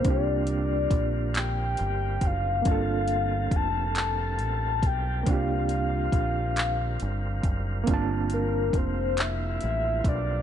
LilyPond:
<<
  \new Staff \with { instrumentName = "Soft synth lead" } { \time 6/8 \key g \minor \tempo 4. = 46 d''4. g''4 f''8~ | f''4 a''8 a''4 g''8 | f''2~ f''8 r8 | r8 bes'8 c''8 e''4 d''8 | }
  \new Staff \with { instrumentName = "Reed electric piano" } { \time 6/8 \key g \minor <bes c' d' f' g'>2. | <bes c' d' f' a'>2. | <bes c' d' f' g'>2. | <bes c' d' f' a''>2. | }
  \new Staff \with { instrumentName = "Tonewheel organ" } { \time 6/8 \key g \minor f'2.~ | f'2. | f'2.~ | f'2. | }
  \new Staff \with { instrumentName = "Tonewheel organ" } { \time 6/8 \key g \minor << { <d bes c'>2. | <bes c' a'>2. | <d c'>2. | <f c'>2. | } \\ { g2. | g2.~ | g2. | g2. | } >> }
  \new Staff \with { instrumentName = "Fingered electric bass" } { \clef bass \time 6/8 \key g \minor c,4 bes,,4 g,,8 fis,,8 | g,,4 f,,4 a,,8 b,,8 | c,4 bes,,4 g,,8 fis,,8 | g,,4 f,,4 a,,8 b,,8 | }
  \new DrumStaff \with { instrumentName = "Drums" } \drummode { \time 6/8 <hh bd>8 hh8 <hh bd>8 <hc hh>8 hh8 <hh bd>8 | <hh bd>8 hh8 <hh bd>8 <hc hh>8 hh8 <hh bd>8 | <hh bd>8 hh8 <hh bd>8 <hc hh>8 hh8 <hh bd>8 | <hh bd>8 hh8 <hh bd>8 <hc hh>8 hh8 <hh bd>8 | }
>>